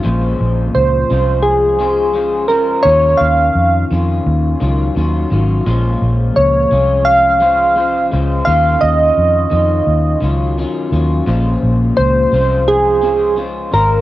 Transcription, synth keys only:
\new Staff \with { instrumentName = "Synth keys" } { \time 4/4 \key bes \minor \tempo 4 = 86 r4 c''4 aes'4. bes'8 | des''8 f''4 r2 r8 | r4 des''4 f''4. r8 | f''8 ees''2 r4. |
r4 c''4 aes'4 r8 bes'8 | }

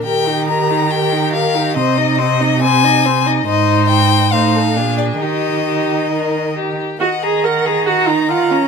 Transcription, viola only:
\new Staff \with { instrumentName = "Viola" } { \time 4/4 \key ees \major \tempo 4 = 139 g'8 ees'8 g'8 ees'8 g'8 ees'8 g'8 ees'8 | c'8 ees'8 c'8 ees'8 c'8 ees'8 c'8 ees'8 | ees'2 ees'4 d'4 | ees'2.~ ees'8 r8 |
\key ees \minor ges'8 aes'8 bes'8 aes'8 ges'8 ees'8 f'8 des'8 | }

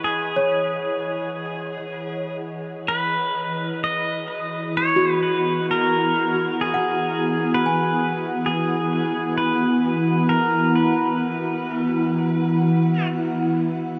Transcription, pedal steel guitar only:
\new Staff \with { instrumentName = "Pedal steel guitar" } { \time 3/4 \key e \major \tempo 4 = 64 gis'2~ gis'8 r8 | b'4 dis''4 cis''8 b'8 | ais'4 gis'4 b'8. r16 | gis'4 b'4 ais'8 b'8~ |
b'2 r4 | }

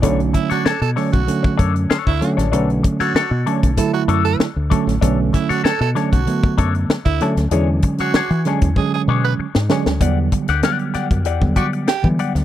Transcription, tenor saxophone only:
\new Staff \with { instrumentName = "Tenor saxophone" } { \time 4/4 \key b \minor \tempo 4 = 96 r8 e'16 fis'16 a'16 a'16 r16 fis'8. r8. e'8 r16 | r8. fis'8. r8 a'16 fis'16 r16 a'16 r4 | r8 e'16 fis'16 a'16 a'16 r16 fis'8. r8. e'8 r16 | r8. fis'8. r8 gis'16 gis'16 r16 b'16 r4 |
r2 r8 fis'16 r16 g'8 r8 | }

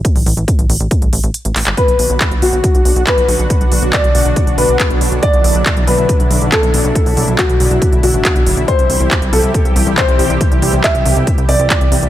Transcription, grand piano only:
\new Staff \with { instrumentName = "Grand piano" } { \time 4/4 \key b \phrygian \tempo 4 = 139 r1 | b'4. fis'4. b'4~ | b'4 d''4. b'4. | d''4. b'4. a'4~ |
a'4 fis'4. fis'4. | c''4. a'4. c''4~ | c''4 e''4. d''4. | }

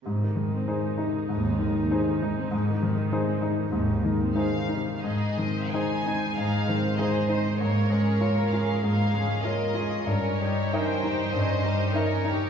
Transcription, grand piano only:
\new Staff \with { instrumentName = "Grand piano" } { \time 4/4 \key aes \major \tempo 4 = 97 aes,8 ees8 <ees' aes' c''>8 ees'8 aes,8 ees8 <ees' aes' c''>8 ees'8 | aes,8 ees8 <ees' aes' c''>8 ees'8 aes,8 ees8 <ees' aes' c''>8 ees'8 | aes,8 ees8 <ees' aes' c''>8 ees'8 aes,8 ees8 <ees' aes' c''>8 ees'8 | aes,8 aes8 <f' bes' des''>8 f'8 aes,8 aes8 <f' bes' des''>8 f'8 |
g,8 g8 <ees' bes' ees''>8 ees'8 g,8 g8 <ees' bes' ees''>8 ees'8 | }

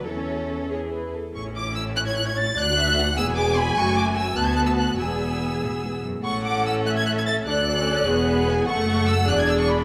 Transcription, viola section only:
\new Staff \with { instrumentName = "Viola section" } { \time 6/8 \key a \major \tempo 4. = 98 << { a'4. gis'4 r8 | e'2. | fis'4. gis'4. | fis'4. fis'4. |
gis'2~ gis'8 r8 | a'2. | a'4. gis'4. | a'4. gis'4. | } \\ { e4. e4 r8 | cis'2. | d'4. b4. | a4. b4. |
b2~ b8 r8 | cis'2. | d'8. cis'8. b4. | a4. d'4. | } >> }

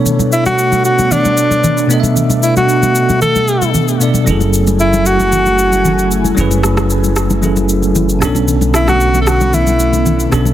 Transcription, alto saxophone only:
\new Staff \with { instrumentName = "Alto saxophone" } { \time 4/4 \key b \dorian \tempo 4 = 114 r8 e'16 fis'8. fis'8 d'4. r8 | r8 e'16 fis'4~ fis'16 a'4 r4 | r4 e'8 fis'2 r8 | r1 |
r8 e'16 fis'8~ fis'32 a'32 fis'8 e'4. r8 | }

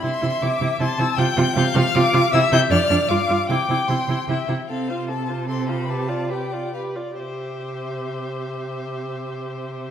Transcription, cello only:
\new Staff \with { instrumentName = "Cello" } { \clef bass \time 3/4 \key c \major \tempo 4 = 151 c8 c8 c8 c8 c8 c8 | c8 c8 c8 c8 c8 c8 | c8 c8 f,8 f,8 g,8 g,8 | c8 c8 c8 c8 c8 c8 |
c2.~ | c2~ c8 r8 | c2.~ | c2. | }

